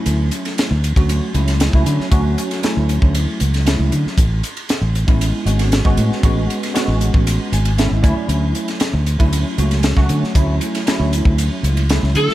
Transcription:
<<
  \new Staff \with { instrumentName = "Lead electric guitar" } { \time 4/4 \key d \lydian \tempo 4 = 116 r1 | r1 | r1 | r1 |
r1 | r2. r8 a'8 | }
  \new Staff \with { instrumentName = "Tine electric piano" } { \time 4/4 \key d \lydian << { r1 | r1 | r1 | r2 r8 gis''8 e''8 d''8 |
r1 | r1 | } \\ { <fis a cis' e'>4~ <fis a cis' e'>16 r8 <fis a cis' fis'>8. <fis a cis' e'>8. <fis a cis' e'>8. | <fis a cis' fis'>4 <fis a cis' e'>4.~ <fis a cis' e'>16 r16 <fis a cis' e'>4 | r4. r16 <gis b cis' e'>8. <gis b cis' fis'>8. <gis b cis' fis'>8. | <gis b cis' fis'>4 <gis b cis' fis'>4.~ <gis b cis' fis'>16 r16 <gis b cis' e'>8 <fis a cis' e'>8~ |
<fis a cis' e'>4~ <fis a cis' e'>16 r8 <fis a cis' e'>8. <fis a cis' fis'>8. <fis a cis' fis'>8. | <fis a cis' e'>4 <fis a cis' e'>4.~ <fis a cis' e'>16 r16 <fis a cis' e'>4 | } >> }
  \new Staff \with { instrumentName = "Fingered electric bass" } { \clef bass \time 4/4 \key d \lydian d,8 r8. d,8 d,8 r16 cis,8. cis,16 d16 r16 | d,8 r8. d,8 d,8 r16 cis,8. cis,16 d16 r16 | a,,8 r8. a,,8 a,,8 r16 gis,,8. gis,,16 a,16 r16 | a,,8 r8. a,,8 a,,8 r16 gis,,8. gis,,16 d,16 r16 |
d,8 r8. d,8 d,8 r16 cis,8. cis,16 d16 r16 | d,8 r8. d,8 d,8 r16 cis,8. cis,16 d16 r16 | }
  \new DrumStaff \with { instrumentName = "Drums" } \drummode { \time 4/4 <hhp cymr>8 <hhp cymr>16 <cymr sn>16 <hhp cymr sn>8 <hhp cymr>16 <bd cymr>16 <hhp cymr>8 <hhp cymr>16 <cymr sn>16 <hhp cymr sn>16 bd16 <hhp cymr>16 sn16 | <hhp bd cymr>8 <hhp cymr>16 <cymr sn>16 <hhp cymr sn>8 <hhp cymr>16 bd16 <hhp cymr>8 <hhp cymr>16 <cymr sn>16 <hhp cymr sn>8 <hhp cymr>16 sn16 | <hhp bd cymr>8 <hhp cymr>16 cymr16 <hhp cymr sn>8 <hhp cymr>16 <bd cymr>16 <hhp cymr>8 <hhp cymr>16 <cymr sn>16 <hhp cymr sn>16 bd16 <hhp cymr>16 sn16 | <hhp bd cymr>8 <hhp cymr>16 <cymr sn>16 <hhp cymr sn>8 <hhp cymr>16 bd16 <hhp cymr>8 <hhp cymr>16 cymr16 <hhp cymr sn>8 <hhp bd cymr>8 |
<hhp cymr>8 <hhp cymr>16 <cymr sn>16 <hhp cymr sn>8 <hhp cymr>16 <bd cymr>16 <hhp cymr>8 <hhp cymr>16 <cymr sn>16 <hhp cymr sn>16 <bd sn>16 <hhp cymr>16 sn16 | <hhp bd cymr>8 <hhp cymr>16 <cymr sn>16 <hhp cymr sn>8 <hhp cymr>16 bd16 <hhp cymr>8 <hhp cymr>16 cymr16 <hhp cymr sn>16 sn16 <hhp cymr>16 sn16 | }
>>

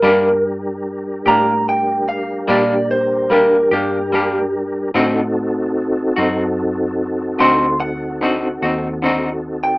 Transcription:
<<
  \new Staff \with { instrumentName = "Clean electric guitar" } { \time 12/8 \key g \minor \tempo 4. = 49 bes'8 r4 bes''8 g''8 f''8 d''8 c''8 bes'8 g'4 r8 | r2. c'''8 fis''2~ fis''16 g''16 | }
  \new Staff \with { instrumentName = "Tonewheel organ" } { \time 12/8 \key g \minor <g d' g' bes'>1. | <c' ees' fis' a'>1. | }
  \new Staff \with { instrumentName = "Clean electric guitar" } { \time 12/8 \key g \minor <g bes d' g'>8 r4 <bes d' g'>8 r4 <g bes d' g'>8 r8 <g bes d' g'>8 <bes d' g'>8 <g bes d' g'>8 r8 | <d c' ees' fis'>8 r4 <c' ees' fis'>8 r4 <d c' ees' fis'>8 r8 <d c' ees' fis'>8 <c' ees' fis'>8 <d c' ees' fis'>8 r8 | }
  \new Staff \with { instrumentName = "Fingered electric bass" } { \clef bass \time 12/8 \key g \minor g,4. a,4. bes,4. g,4. | a,4. fis,4. d,4. ees,4. | }
>>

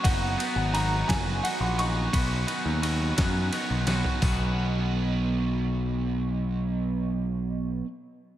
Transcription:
<<
  \new Staff \with { instrumentName = "Upright piano" } { \time 6/8 \key b \major \tempo 4. = 57 fis''4 ais''8 gis''8 fis''8 cis'''8 | b''2 r4 | r2. | r2. | }
  \new Staff \with { instrumentName = "Clean electric guitar" } { \time 6/8 \key b \major <dis b dis' fis'>8 <dis b dis' fis'>8 <dis b dis' fis'>8 <dis b dis' fis'>8 <dis b dis' fis'>8 <dis b dis' fis'>8 | <dis b cis' fis'>8 <dis b cis' fis'>8 <dis b cis' fis'>8 <dis b cis' fis'>8 <dis b cis' fis'>8 <dis b cis' fis'>8 | <dis b cis' fis'>2.~ | <dis b cis' fis'>2. | }
  \new Staff \with { instrumentName = "Overdriven electric guitar" } { \time 6/8 \key b \major <fis b dis' fis'>8 <fis b dis' fis'>8 <fis b dis' fis'>8 <fis b dis' fis'>8 <fis b dis' fis'>8 <fis b dis' fis'>8 | <b, fis b dis' fis'>8 <b, fis b dis' fis'>8 <b, fis b dis' fis'>8 <b, fis b dis' fis'>8 <b, fis b dis' fis'>8 <b, fis b dis' fis'>8 | <b, fis b dis' fis'>2.~ | <b, fis b dis' fis'>2. | }
  \new Staff \with { instrumentName = "Picked electric bass" } { \clef bass \time 6/8 \key b \major fis,,8 r16 gis,,8. fis,,8 r16 ais,,8. | b,,8 r16 dis,8. fis,8 r16 b,,8 r16 | b,,2.~ | b,,2. | }
  \new DrumStaff \with { instrumentName = "Drums" } \drummode { \time 6/8 <bd cymr>8 cymr8 cymr8 <bd cymr sn>8 cymr8 cymr8 | <bd cymr>8 cymr8 cymr8 <bd cymr sn>8 cymr8 <cymr sn>16 tomfh16 | <hho bd tomfh>4. r4. | r4. r4. | }
>>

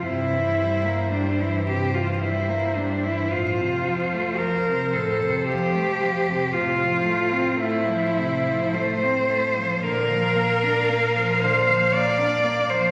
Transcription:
<<
  \new Staff \with { instrumentName = "Cello" } { \time 3/4 \key f \major \tempo 4 = 56 c''2. | c''2. | c''2. | f''2. | }
  \new Staff \with { instrumentName = "Cello" } { \time 3/4 \key f \major e'4 d'16 e'16 g'16 f'16 e'8 d'16 e'16 | f'4 bes'8 a'8 g'4 | f'4 e'4 c''4 | bes'4. c''8 d''8. c''16 | }
  \new Staff \with { instrumentName = "Cello" } { \clef bass \time 3/4 \key f \major c16 e16 g16 bes16 g16 e16 c16 e16 g16 bes16 g16 e16 | a,16 c16 f16 a16 f16 c16 a,16 c16 f16 a16 f16 c16 | c16 f16 a16 c'16 a16 f16 c16 f16 a16 c'16 a16 f16 | d16 f16 bes16 d'16 bes16 f16 d16 f16 bes16 d'16 bes16 f16 | }
  \new Staff \with { instrumentName = "Cello" } { \clef bass \time 3/4 \key f \major g,2. | f,2. | a,2. | bes,2. | }
>>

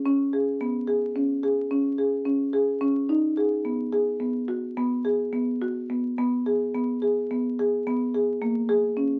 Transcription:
\new Staff \with { instrumentName = "Marimba" } { \time 11/8 \key gis \minor \tempo 4 = 108 cis'8 gis'8 b8 gis'8 cis'8 gis'8 cis'8 gis'8 cis'8 gis'8 cis'8 | dis'8 gis'8 b8 gis'8 b8 fis'8 b8 gis'8 b8 fis'8 b8 | b8 gis'8 b8 gis'8 b8 gis'8 b8 gis'8 ais8 gis'8 cis'8 | }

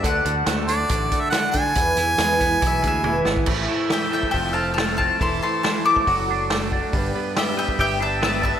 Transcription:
<<
  \new Staff \with { instrumentName = "Mandolin" } { \time 4/4 \key a \minor \tempo 4 = 139 fis''4~ fis''16 r2 r8. | r2 e''8 e''4~ e''16 r16 | r4 <e'' g''>8 <e'' g''>8 <e'' g''>8 <f'' a''>8 <f'' a''>8 <f'' a''>8 | <a'' c'''>8 <a'' c'''>8 <a'' c'''>8 d'''2 r8 |
r4 <e'' g''>8 <e'' g''>8 <e'' g''>8 <e'' a''>8 <e'' a''>8 <e'' a''>8 | }
  \new Staff \with { instrumentName = "Harmonica" } { \time 4/4 \key a \minor r4. d''4~ d''16 e''16 fis''8 gis''8~ | gis''2.~ gis''8 r8 | r1 | r1 |
r1 | }
  \new Staff \with { instrumentName = "Steel-string acoustic guitar" } { \time 4/4 \key a \minor <d a d' fis' a'>8 <d' fis' a'>8 <d a d' fis' a'>8 <d' fis' a'>8 <a d' fis' a'>8 <d' fis' a'>8 <d a d' fis' a'>8 <d' fis' a'>8 | <e b e' gis' b'>8 <e' gis' b'>8 <e b e' gis' b'>8 <e' gis' b'>8 <b e' b'>8 <e' gis' b'>8 <e b e' gis' b'>8 <e' gis' b'>8 | <a, e a c' e' a'>8 <a c' e' a'>8 <a c' e'>8 <a c' e' a'>8 <f a c' f' a'>8 <c' f' a'>8 <a c' f'>8 <c' f' a'>8 | <e a c' e' a'>8 <c' e' a'>8 <a c' e' a'>8 <c' e' a'>8 <fis a d' fis' a'>8 <d' fis' a'>8 <a d' fis' a'>8 <d' fis' a'>8 |
<g d' g' b'>8 <d' g' b'>8 <g d' g' b'>8 <d' g' b'>8 <g d' g' b'>8 <d' g' b'>8 <g d' g' b'>8 <d' g' b'>8 | }
  \new Staff \with { instrumentName = "Clean electric guitar" } { \time 4/4 \key a \minor d8 d8 a8 d'8 d8 a8 d8 d'8 | e,8 e8 gis8 b8 e8 gis8 e8 b8 | a,8 a8 e8 a8 f,8 c'8 a8 c'8 | e8 a8 e8 a8 fis8 d'8 a8 d'8 |
g,8 b8 g8 b8 g'8 d'8 b8 d'8 | }
  \new Staff \with { instrumentName = "Fingered electric bass" } { \clef bass \time 4/4 \key a \minor d,8 d,8 d,4 a,,8 r4 d8 | e,8 e,8 e,4 b,,8 d,8 e,,8 gis,,8 | a,,8 r4. f,,2 | e,,8 r4. fis,,2 |
g,,8 r4. g,,2 | }
  \new DrumStaff \with { instrumentName = "Drums" } \drummode { \time 4/4 <hh bd>8 hh8 <hh sn>8 hh8 <hh bd>8 <hh bd>8 <hh sn>8 <hh bd>8 | <hh bd>8 hh8 <hh sn>8 <hh bd>8 <hh bd>8 <hh bd>8 tommh8 sn16 bd16 | <cymc bd>4 <hho sn>8. bd16 <hho bd>4 <hho sn>8 bd8 | <hho bd>4 <hho sn>8. bd16 <hho bd>4 <hho sn>8 bd8 |
<hho bd>4 <hho sn>8. bd16 <hho bd>4 <hho sn>8 bd8 | }
>>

